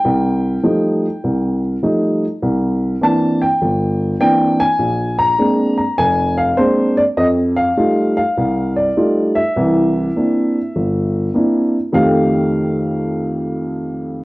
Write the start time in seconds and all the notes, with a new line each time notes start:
Already playing: G5
0.05 C2
0.63 F3 G3 A3 D#4
1.24 C2
1.83 F3 G3 A3 D#4
2.43 C2
3.01 E3 A#3 C4 D4 A5
3.41 G5
3.61 G1
4.20 E3 A#3 C4 D4 G5
4.60 G#5
4.79 A#1
5.19 A#5
5.38 G#3 A#3 C4 D4
5.78 A#5
5.98 F1 G#5
6.38 F5
6.57 G#3 A#3 C4 D4 C5
6.97 D5
7.17 F2 D#5
7.56 F5
7.77 G3 A3 D#4 F4
8.17 F5
8.37 C2
8.76 D5
8.97 G3 A3 D#4 F4
9.35 E5
9.56 C2 E3
10.16 A#3 C4 D4 E4
10.76 G1
11.34 A#3 C4 D4 E4
11.93 F2 D#3 A3 G4 F5